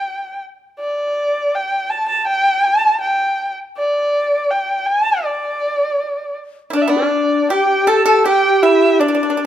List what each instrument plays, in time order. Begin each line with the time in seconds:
Already playing: erhu G5
0.79 erhu D5
1.55 erhu G5
1.90 erhu A5
2.09 erhu A5
2.27 erhu G5
2.64 erhu A5
3.01 erhu G5
3.78 erhu D5
4.51 erhu G5
4.86 erhu A5
5.23 erhu D5
6.70 pipa D4 E4, xiao D4
6.75 alto saxophone D4, erhu D5
6.82 erhu E5
6.88 pipa D4, alto saxophone D4, xiao D4, erhu D5
6.97 xiao B4
7.03 xiao D4
7.50 pipa G4, xiao G4, alto saxophone G4, erhu G5
7.87 pipa A4, xiao A4, erhu A5
8.05 xiao A4, pipa A4, erhu A5
8.18 xiao A4
8.26 pipa G4, alto saxophone G4, xiao G4, erhu G5
8.63 xiao E4, pipa E4, erhu E5
9.00 xiao D4, alto saxophone D4, pipa D4, erhu D5
9.08 pipa D4
9.15 pipa D4
9.23 pipa D4
9.30 pipa D4
9.37 pipa D4